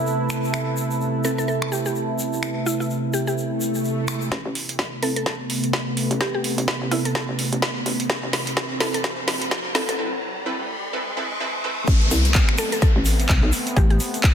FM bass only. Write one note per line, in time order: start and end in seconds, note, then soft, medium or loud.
4.32 4.43 A1 medium
4.46 4.91 A1 medium
6.11 6.32 A1 medium
6.58 6.80 A1 loud
6.82 6.90 A1 medium
6.91 7.27 C2 medium
7.29 7.50 A1 loud
7.53 7.84 A1 medium
7.86 8.08 A1 medium
8.10 8.21 A1 loud
8.23 8.69 A1 loud
9.89 9.99 A1 medium
11.88 12.10 A1 medium
12.11 12.46 C2 loud
12.96 13.28 A1 loud
13.43 13.51 B1 loud